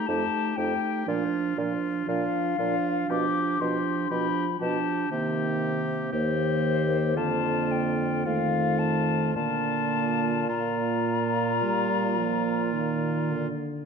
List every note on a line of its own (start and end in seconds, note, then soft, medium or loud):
0.06 0.24 F2 soft
0.06 0.56 A3 soft
0.06 0.56 D#4 soft
0.06 0.57 G4 soft
0.06 0.58 A5 medium
0.56 0.74 F2 soft
0.56 1.06 A3 soft
0.56 1.06 D#4 soft
0.56 1.07 G4 soft
0.56 1.07 G5 medium
1.06 1.24 A#2 soft
1.06 1.56 F3 soft
1.06 1.56 D4 soft
1.06 1.57 F4 soft
1.56 1.72 A#2 soft
1.56 2.06 F3 soft
1.56 2.07 D4 soft
1.56 2.08 F4 soft
2.07 2.24 A#2 soft
2.07 2.57 F3 soft
2.07 2.58 D4 soft
2.07 2.58 F4 soft
2.07 3.12 F5 medium
2.58 2.75 A#2 soft
2.58 3.08 F3 soft
2.58 3.09 D4 soft
2.58 3.09 F4 soft
3.08 3.26 B2 soft
3.08 3.59 F3 soft
3.08 3.60 D4 soft
3.08 3.60 G4 soft
3.08 3.62 D6 medium
3.60 3.77 B2 soft
3.60 4.10 F3 soft
3.60 4.10 D4 soft
3.60 4.10 G4 soft
3.60 4.12 C6 medium
4.10 4.27 B2 soft
4.10 4.59 F3 soft
4.10 4.46 D4 soft
4.10 4.46 G4 soft
4.10 4.61 B5 medium
4.60 4.77 B2 soft
4.60 5.09 F3 soft
4.60 5.10 D4 soft
4.60 5.10 G4 soft
4.60 5.11 A5 medium
5.10 6.09 C3 soft
5.10 5.94 D#3 soft
5.10 6.08 A#3 soft
5.10 6.08 G4 soft
6.11 7.18 D#2 soft
6.11 7.14 D#3 soft
6.11 7.15 A#3 soft
6.11 7.14 G4 soft
6.11 7.19 C5 medium
7.16 8.25 F2 soft
7.16 8.26 D3 soft
7.16 8.27 A#3 soft
7.16 8.23 F4 soft
7.16 7.73 A5 medium
7.71 8.28 G5 soft
8.25 9.33 F2 soft
8.25 9.33 D#3 soft
8.25 9.35 A3 soft
8.25 9.33 F4 soft
8.25 8.80 F5 medium
8.79 9.34 A5 medium
9.34 13.48 A#2 soft
9.34 10.47 D3 soft
9.34 10.32 A#3 soft
9.34 10.48 F4 soft
9.34 10.51 A5 medium
10.49 11.65 A#2 soft
10.49 13.48 A#3 soft
10.49 13.48 F4 soft
10.49 13.30 A#5 medium
11.63 12.20 G3 medium
12.18 12.74 F3 soft
12.73 13.32 D#3 soft
13.30 13.85 D3 soft